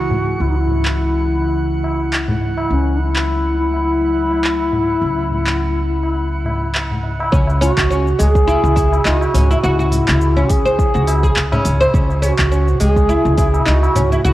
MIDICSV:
0, 0, Header, 1, 8, 480
1, 0, Start_track
1, 0, Key_signature, 4, "minor"
1, 0, Tempo, 576923
1, 334, Time_signature, 4, 2, 24, 8
1, 11923, End_track
2, 0, Start_track
2, 0, Title_t, "Synth texture"
2, 0, Program_c, 0, 99
2, 0, Note_on_c, 0, 78, 77
2, 6105, Note_off_c, 0, 78, 0
2, 11923, End_track
3, 0, Start_track
3, 0, Title_t, "Bansuri"
3, 0, Program_c, 1, 73
3, 0, Note_on_c, 1, 66, 105
3, 337, Note_on_c, 1, 64, 80
3, 349, Note_off_c, 1, 66, 0
3, 404, Note_on_c, 1, 63, 72
3, 416, Note_off_c, 1, 64, 0
3, 467, Note_on_c, 1, 66, 83
3, 480, Note_off_c, 1, 63, 0
3, 500, Note_on_c, 1, 64, 91
3, 508, Note_off_c, 1, 66, 0
3, 1296, Note_off_c, 1, 64, 0
3, 2252, Note_on_c, 1, 61, 92
3, 2497, Note_on_c, 1, 64, 105
3, 2510, Note_off_c, 1, 61, 0
3, 2971, Note_off_c, 1, 64, 0
3, 2976, Note_on_c, 1, 64, 105
3, 5582, Note_off_c, 1, 64, 0
3, 6339, Note_on_c, 1, 66, 110
3, 6819, Note_on_c, 1, 68, 116
3, 6831, Note_off_c, 1, 66, 0
3, 7538, Note_on_c, 1, 66, 98
3, 7551, Note_off_c, 1, 68, 0
3, 8026, Note_on_c, 1, 64, 100
3, 8039, Note_off_c, 1, 66, 0
3, 8736, Note_on_c, 1, 68, 105
3, 8749, Note_off_c, 1, 64, 0
3, 9695, Note_off_c, 1, 68, 0
3, 10174, Note_on_c, 1, 68, 87
3, 10208, Note_on_c, 1, 66, 95
3, 10217, Note_off_c, 1, 68, 0
3, 10638, Note_on_c, 1, 67, 107
3, 10651, Note_off_c, 1, 66, 0
3, 10730, Note_off_c, 1, 67, 0
3, 10730, Note_on_c, 1, 68, 107
3, 11366, Note_off_c, 1, 68, 0
3, 11366, Note_on_c, 1, 68, 88
3, 11404, Note_on_c, 1, 66, 96
3, 11412, Note_off_c, 1, 68, 0
3, 11844, Note_off_c, 1, 66, 0
3, 11849, Note_on_c, 1, 64, 106
3, 11923, Note_off_c, 1, 64, 0
3, 11923, End_track
4, 0, Start_track
4, 0, Title_t, "Oud"
4, 0, Program_c, 2, 24
4, 6089, Note_on_c, 2, 61, 84
4, 6218, Note_off_c, 2, 61, 0
4, 6332, Note_on_c, 2, 61, 94
4, 6408, Note_off_c, 2, 61, 0
4, 6575, Note_on_c, 2, 61, 80
4, 6700, Note_off_c, 2, 61, 0
4, 6810, Note_on_c, 2, 56, 73
4, 7041, Note_off_c, 2, 56, 0
4, 7051, Note_on_c, 2, 64, 105
4, 7280, Note_off_c, 2, 64, 0
4, 7289, Note_on_c, 2, 64, 78
4, 7418, Note_off_c, 2, 64, 0
4, 7531, Note_on_c, 2, 63, 78
4, 7659, Note_off_c, 2, 63, 0
4, 7775, Note_on_c, 2, 61, 73
4, 7901, Note_off_c, 2, 61, 0
4, 7910, Note_on_c, 2, 64, 78
4, 7969, Note_off_c, 2, 64, 0
4, 8017, Note_on_c, 2, 66, 102
4, 8135, Note_off_c, 2, 66, 0
4, 8146, Note_on_c, 2, 66, 72
4, 8613, Note_off_c, 2, 66, 0
4, 8624, Note_on_c, 2, 61, 78
4, 8852, Note_off_c, 2, 61, 0
4, 8865, Note_on_c, 2, 72, 108
4, 8967, Note_off_c, 2, 72, 0
4, 9102, Note_on_c, 2, 66, 72
4, 9331, Note_off_c, 2, 66, 0
4, 9345, Note_on_c, 2, 68, 94
4, 9448, Note_off_c, 2, 68, 0
4, 9586, Note_on_c, 2, 61, 79
4, 9813, Note_off_c, 2, 61, 0
4, 9821, Note_on_c, 2, 72, 108
4, 9925, Note_off_c, 2, 72, 0
4, 9931, Note_on_c, 2, 61, 84
4, 10058, Note_off_c, 2, 61, 0
4, 10168, Note_on_c, 2, 61, 103
4, 10246, Note_off_c, 2, 61, 0
4, 10412, Note_on_c, 2, 61, 84
4, 10539, Note_off_c, 2, 61, 0
4, 10650, Note_on_c, 2, 56, 81
4, 10881, Note_off_c, 2, 56, 0
4, 10890, Note_on_c, 2, 64, 101
4, 11121, Note_off_c, 2, 64, 0
4, 11132, Note_on_c, 2, 64, 80
4, 11259, Note_off_c, 2, 64, 0
4, 11366, Note_on_c, 2, 63, 85
4, 11496, Note_off_c, 2, 63, 0
4, 11613, Note_on_c, 2, 61, 73
4, 11739, Note_off_c, 2, 61, 0
4, 11747, Note_on_c, 2, 64, 75
4, 11808, Note_off_c, 2, 64, 0
4, 11851, Note_on_c, 2, 66, 107
4, 11923, Note_off_c, 2, 66, 0
4, 11923, End_track
5, 0, Start_track
5, 0, Title_t, "Ambient pad"
5, 0, Program_c, 3, 92
5, 0, Note_on_c, 3, 49, 74
5, 0, Note_on_c, 3, 52, 73
5, 0, Note_on_c, 3, 56, 70
5, 0, Note_on_c, 3, 64, 78
5, 2221, Note_off_c, 3, 56, 0
5, 2222, Note_off_c, 3, 52, 0
5, 2249, Note_on_c, 3, 54, 70
5, 2254, Note_on_c, 3, 57, 75
5, 6058, Note_off_c, 3, 54, 0
5, 6059, Note_off_c, 3, 64, 0
5, 6060, Note_off_c, 3, 49, 0
5, 6060, Note_off_c, 3, 57, 0
5, 11923, End_track
6, 0, Start_track
6, 0, Title_t, "Upright bass"
6, 0, Program_c, 4, 32
6, 0, Note_on_c, 4, 37, 71
6, 312, Note_off_c, 4, 37, 0
6, 333, Note_on_c, 4, 37, 76
6, 2232, Note_off_c, 4, 37, 0
6, 2251, Note_on_c, 4, 37, 79
6, 4151, Note_off_c, 4, 37, 0
6, 4173, Note_on_c, 4, 37, 76
6, 6072, Note_off_c, 4, 37, 0
6, 6094, Note_on_c, 4, 37, 93
6, 6385, Note_off_c, 4, 37, 0
6, 6468, Note_on_c, 4, 37, 91
6, 6749, Note_off_c, 4, 37, 0
6, 6818, Note_on_c, 4, 37, 80
6, 7107, Note_off_c, 4, 37, 0
6, 7186, Note_on_c, 4, 37, 104
6, 7468, Note_off_c, 4, 37, 0
6, 7536, Note_on_c, 4, 37, 80
6, 7692, Note_off_c, 4, 37, 0
6, 7774, Note_on_c, 4, 37, 77
6, 7931, Note_off_c, 4, 37, 0
6, 8017, Note_on_c, 4, 37, 100
6, 8306, Note_off_c, 4, 37, 0
6, 8391, Note_on_c, 4, 37, 99
6, 8670, Note_off_c, 4, 37, 0
6, 8737, Note_on_c, 4, 37, 75
6, 9026, Note_off_c, 4, 37, 0
6, 9108, Note_on_c, 4, 37, 105
6, 9388, Note_off_c, 4, 37, 0
6, 9455, Note_on_c, 4, 37, 77
6, 9612, Note_off_c, 4, 37, 0
6, 9695, Note_on_c, 4, 37, 88
6, 9852, Note_off_c, 4, 37, 0
6, 9933, Note_on_c, 4, 37, 95
6, 10224, Note_off_c, 4, 37, 0
6, 10307, Note_on_c, 4, 37, 101
6, 10588, Note_off_c, 4, 37, 0
6, 10652, Note_on_c, 4, 37, 79
6, 10944, Note_off_c, 4, 37, 0
6, 11026, Note_on_c, 4, 37, 99
6, 11307, Note_off_c, 4, 37, 0
6, 11372, Note_on_c, 4, 37, 82
6, 11530, Note_off_c, 4, 37, 0
6, 11617, Note_on_c, 4, 37, 82
6, 11773, Note_off_c, 4, 37, 0
6, 11855, Note_on_c, 4, 37, 92
6, 11923, Note_off_c, 4, 37, 0
6, 11923, End_track
7, 0, Start_track
7, 0, Title_t, "Tabla"
7, 86, Note_on_c, 9, 64, 81
7, 90, Note_on_c, 9, 63, 44
7, 169, Note_off_c, 9, 64, 0
7, 173, Note_off_c, 9, 63, 0
7, 565, Note_on_c, 9, 64, 66
7, 648, Note_off_c, 9, 64, 0
7, 1181, Note_on_c, 9, 60, 36
7, 1264, Note_off_c, 9, 60, 0
7, 1527, Note_on_c, 9, 63, 54
7, 1533, Note_on_c, 9, 60, 52
7, 1611, Note_off_c, 9, 63, 0
7, 1616, Note_off_c, 9, 60, 0
7, 1901, Note_on_c, 9, 64, 85
7, 1985, Note_off_c, 9, 64, 0
7, 2010, Note_on_c, 9, 63, 47
7, 2093, Note_off_c, 9, 63, 0
7, 2139, Note_on_c, 9, 63, 59
7, 2144, Note_on_c, 9, 60, 65
7, 2222, Note_off_c, 9, 63, 0
7, 2227, Note_off_c, 9, 60, 0
7, 3109, Note_on_c, 9, 60, 35
7, 3192, Note_off_c, 9, 60, 0
7, 3336, Note_on_c, 9, 63, 42
7, 3420, Note_off_c, 9, 63, 0
7, 3588, Note_on_c, 9, 60, 50
7, 3671, Note_off_c, 9, 60, 0
7, 3929, Note_on_c, 9, 64, 79
7, 3930, Note_on_c, 9, 63, 47
7, 4012, Note_off_c, 9, 64, 0
7, 4013, Note_off_c, 9, 63, 0
7, 4296, Note_on_c, 9, 63, 37
7, 4379, Note_off_c, 9, 63, 0
7, 4417, Note_on_c, 9, 64, 61
7, 4500, Note_off_c, 9, 64, 0
7, 5020, Note_on_c, 9, 60, 37
7, 5103, Note_off_c, 9, 60, 0
7, 5365, Note_on_c, 9, 64, 66
7, 5372, Note_on_c, 9, 63, 60
7, 5373, Note_on_c, 9, 60, 54
7, 5448, Note_off_c, 9, 64, 0
7, 5455, Note_off_c, 9, 63, 0
7, 5456, Note_off_c, 9, 60, 0
7, 5614, Note_on_c, 9, 60, 54
7, 5697, Note_off_c, 9, 60, 0
7, 5751, Note_on_c, 9, 64, 70
7, 5834, Note_off_c, 9, 64, 0
7, 5852, Note_on_c, 9, 63, 48
7, 5935, Note_off_c, 9, 63, 0
7, 5984, Note_on_c, 9, 63, 66
7, 5991, Note_on_c, 9, 60, 69
7, 6067, Note_off_c, 9, 63, 0
7, 6074, Note_off_c, 9, 60, 0
7, 6216, Note_on_c, 9, 60, 61
7, 6222, Note_on_c, 9, 63, 54
7, 6299, Note_off_c, 9, 60, 0
7, 6305, Note_off_c, 9, 63, 0
7, 6467, Note_on_c, 9, 63, 48
7, 6550, Note_off_c, 9, 63, 0
7, 7428, Note_on_c, 9, 60, 60
7, 7511, Note_off_c, 9, 60, 0
7, 7667, Note_on_c, 9, 60, 76
7, 7750, Note_off_c, 9, 60, 0
7, 7777, Note_on_c, 9, 64, 96
7, 7860, Note_off_c, 9, 64, 0
7, 7912, Note_on_c, 9, 63, 74
7, 7995, Note_off_c, 9, 63, 0
7, 8151, Note_on_c, 9, 63, 54
7, 8234, Note_off_c, 9, 63, 0
7, 8250, Note_on_c, 9, 64, 73
7, 8333, Note_off_c, 9, 64, 0
7, 8385, Note_on_c, 9, 60, 55
7, 8388, Note_on_c, 9, 63, 56
7, 8468, Note_off_c, 9, 60, 0
7, 8472, Note_off_c, 9, 63, 0
7, 9214, Note_on_c, 9, 60, 84
7, 9298, Note_off_c, 9, 60, 0
7, 9584, Note_on_c, 9, 60, 79
7, 9589, Note_on_c, 9, 64, 96
7, 9667, Note_off_c, 9, 60, 0
7, 9673, Note_off_c, 9, 64, 0
7, 9825, Note_on_c, 9, 60, 77
7, 9908, Note_off_c, 9, 60, 0
7, 10062, Note_on_c, 9, 60, 60
7, 10068, Note_on_c, 9, 63, 49
7, 10145, Note_off_c, 9, 60, 0
7, 10151, Note_off_c, 9, 63, 0
7, 10299, Note_on_c, 9, 63, 51
7, 10383, Note_off_c, 9, 63, 0
7, 11266, Note_on_c, 9, 60, 67
7, 11349, Note_off_c, 9, 60, 0
7, 11507, Note_on_c, 9, 60, 76
7, 11590, Note_off_c, 9, 60, 0
7, 11611, Note_on_c, 9, 64, 94
7, 11694, Note_off_c, 9, 64, 0
7, 11752, Note_on_c, 9, 63, 67
7, 11835, Note_off_c, 9, 63, 0
7, 11923, End_track
8, 0, Start_track
8, 0, Title_t, "Drums"
8, 709, Note_on_c, 9, 39, 64
8, 792, Note_off_c, 9, 39, 0
8, 1774, Note_on_c, 9, 39, 64
8, 1857, Note_off_c, 9, 39, 0
8, 2627, Note_on_c, 9, 39, 66
8, 2710, Note_off_c, 9, 39, 0
8, 3696, Note_on_c, 9, 39, 61
8, 3779, Note_off_c, 9, 39, 0
8, 4549, Note_on_c, 9, 39, 75
8, 4632, Note_off_c, 9, 39, 0
8, 5616, Note_on_c, 9, 39, 69
8, 5699, Note_off_c, 9, 39, 0
8, 6095, Note_on_c, 9, 36, 123
8, 6102, Note_on_c, 9, 69, 40
8, 6178, Note_off_c, 9, 36, 0
8, 6185, Note_off_c, 9, 69, 0
8, 6235, Note_on_c, 9, 69, 22
8, 6318, Note_off_c, 9, 69, 0
8, 6339, Note_on_c, 9, 46, 88
8, 6344, Note_on_c, 9, 69, 69
8, 6422, Note_off_c, 9, 46, 0
8, 6427, Note_off_c, 9, 69, 0
8, 6468, Note_on_c, 9, 36, 62
8, 6472, Note_on_c, 9, 39, 78
8, 6477, Note_on_c, 9, 69, 32
8, 6551, Note_off_c, 9, 36, 0
8, 6555, Note_off_c, 9, 39, 0
8, 6560, Note_off_c, 9, 69, 0
8, 6583, Note_on_c, 9, 69, 43
8, 6666, Note_off_c, 9, 69, 0
8, 6715, Note_on_c, 9, 69, 23
8, 6798, Note_off_c, 9, 69, 0
8, 6817, Note_on_c, 9, 46, 99
8, 6822, Note_on_c, 9, 69, 80
8, 6900, Note_off_c, 9, 46, 0
8, 6905, Note_off_c, 9, 69, 0
8, 6948, Note_on_c, 9, 36, 105
8, 6953, Note_on_c, 9, 69, 35
8, 7031, Note_off_c, 9, 36, 0
8, 7036, Note_off_c, 9, 69, 0
8, 7062, Note_on_c, 9, 69, 42
8, 7145, Note_off_c, 9, 69, 0
8, 7196, Note_on_c, 9, 69, 22
8, 7280, Note_off_c, 9, 69, 0
8, 7296, Note_on_c, 9, 36, 101
8, 7296, Note_on_c, 9, 46, 84
8, 7301, Note_on_c, 9, 69, 73
8, 7379, Note_off_c, 9, 36, 0
8, 7380, Note_off_c, 9, 46, 0
8, 7385, Note_off_c, 9, 69, 0
8, 7434, Note_on_c, 9, 69, 33
8, 7518, Note_off_c, 9, 69, 0
8, 7536, Note_on_c, 9, 39, 76
8, 7541, Note_on_c, 9, 69, 45
8, 7619, Note_off_c, 9, 39, 0
8, 7624, Note_off_c, 9, 69, 0
8, 7674, Note_on_c, 9, 69, 23
8, 7758, Note_off_c, 9, 69, 0
8, 7776, Note_on_c, 9, 46, 94
8, 7781, Note_on_c, 9, 69, 79
8, 7859, Note_off_c, 9, 46, 0
8, 7864, Note_off_c, 9, 69, 0
8, 7914, Note_on_c, 9, 69, 33
8, 7997, Note_off_c, 9, 69, 0
8, 8021, Note_on_c, 9, 69, 42
8, 8105, Note_off_c, 9, 69, 0
8, 8154, Note_on_c, 9, 69, 23
8, 8237, Note_off_c, 9, 69, 0
8, 8253, Note_on_c, 9, 46, 80
8, 8258, Note_on_c, 9, 69, 73
8, 8336, Note_off_c, 9, 46, 0
8, 8341, Note_off_c, 9, 69, 0
8, 8387, Note_on_c, 9, 39, 79
8, 8392, Note_on_c, 9, 69, 35
8, 8470, Note_off_c, 9, 39, 0
8, 8475, Note_off_c, 9, 69, 0
8, 8497, Note_on_c, 9, 69, 45
8, 8581, Note_off_c, 9, 69, 0
8, 8630, Note_on_c, 9, 69, 22
8, 8713, Note_off_c, 9, 69, 0
8, 8732, Note_on_c, 9, 46, 91
8, 8736, Note_on_c, 9, 36, 107
8, 8737, Note_on_c, 9, 69, 84
8, 8816, Note_off_c, 9, 46, 0
8, 8819, Note_off_c, 9, 36, 0
8, 8821, Note_off_c, 9, 69, 0
8, 8872, Note_on_c, 9, 69, 36
8, 8955, Note_off_c, 9, 69, 0
8, 8976, Note_on_c, 9, 36, 108
8, 8980, Note_on_c, 9, 69, 44
8, 9059, Note_off_c, 9, 36, 0
8, 9064, Note_off_c, 9, 69, 0
8, 9112, Note_on_c, 9, 69, 22
8, 9195, Note_off_c, 9, 69, 0
8, 9213, Note_on_c, 9, 46, 84
8, 9218, Note_on_c, 9, 69, 78
8, 9296, Note_off_c, 9, 46, 0
8, 9301, Note_off_c, 9, 69, 0
8, 9348, Note_on_c, 9, 36, 61
8, 9350, Note_on_c, 9, 69, 36
8, 9431, Note_off_c, 9, 36, 0
8, 9434, Note_off_c, 9, 69, 0
8, 9453, Note_on_c, 9, 39, 80
8, 9458, Note_on_c, 9, 69, 45
8, 9536, Note_off_c, 9, 39, 0
8, 9541, Note_off_c, 9, 69, 0
8, 9590, Note_on_c, 9, 69, 25
8, 9673, Note_off_c, 9, 69, 0
8, 9691, Note_on_c, 9, 46, 96
8, 9696, Note_on_c, 9, 69, 80
8, 9774, Note_off_c, 9, 46, 0
8, 9779, Note_off_c, 9, 69, 0
8, 9830, Note_on_c, 9, 69, 33
8, 9913, Note_off_c, 9, 69, 0
8, 9934, Note_on_c, 9, 36, 127
8, 9938, Note_on_c, 9, 69, 46
8, 10017, Note_off_c, 9, 36, 0
8, 10021, Note_off_c, 9, 69, 0
8, 10070, Note_on_c, 9, 69, 23
8, 10153, Note_off_c, 9, 69, 0
8, 10171, Note_on_c, 9, 46, 76
8, 10176, Note_on_c, 9, 69, 79
8, 10254, Note_off_c, 9, 46, 0
8, 10260, Note_off_c, 9, 69, 0
8, 10306, Note_on_c, 9, 39, 79
8, 10307, Note_on_c, 9, 36, 63
8, 10311, Note_on_c, 9, 69, 35
8, 10389, Note_off_c, 9, 39, 0
8, 10391, Note_off_c, 9, 36, 0
8, 10394, Note_off_c, 9, 69, 0
8, 10417, Note_on_c, 9, 69, 46
8, 10501, Note_off_c, 9, 69, 0
8, 10549, Note_on_c, 9, 69, 24
8, 10632, Note_off_c, 9, 69, 0
8, 10650, Note_on_c, 9, 46, 88
8, 10655, Note_on_c, 9, 69, 82
8, 10733, Note_off_c, 9, 46, 0
8, 10738, Note_off_c, 9, 69, 0
8, 10786, Note_on_c, 9, 36, 103
8, 10789, Note_on_c, 9, 69, 36
8, 10869, Note_off_c, 9, 36, 0
8, 10872, Note_off_c, 9, 69, 0
8, 10894, Note_on_c, 9, 69, 46
8, 10977, Note_off_c, 9, 69, 0
8, 11028, Note_on_c, 9, 69, 23
8, 11112, Note_off_c, 9, 69, 0
8, 11130, Note_on_c, 9, 46, 83
8, 11134, Note_on_c, 9, 36, 108
8, 11135, Note_on_c, 9, 69, 76
8, 11213, Note_off_c, 9, 46, 0
8, 11217, Note_off_c, 9, 36, 0
8, 11218, Note_off_c, 9, 69, 0
8, 11269, Note_on_c, 9, 69, 36
8, 11352, Note_off_c, 9, 69, 0
8, 11372, Note_on_c, 9, 39, 73
8, 11377, Note_on_c, 9, 69, 45
8, 11455, Note_off_c, 9, 39, 0
8, 11461, Note_off_c, 9, 69, 0
8, 11510, Note_on_c, 9, 69, 26
8, 11594, Note_off_c, 9, 69, 0
8, 11611, Note_on_c, 9, 46, 90
8, 11616, Note_on_c, 9, 69, 82
8, 11695, Note_off_c, 9, 46, 0
8, 11700, Note_off_c, 9, 69, 0
8, 11750, Note_on_c, 9, 69, 33
8, 11833, Note_off_c, 9, 69, 0
8, 11856, Note_on_c, 9, 69, 45
8, 11923, Note_off_c, 9, 69, 0
8, 11923, End_track
0, 0, End_of_file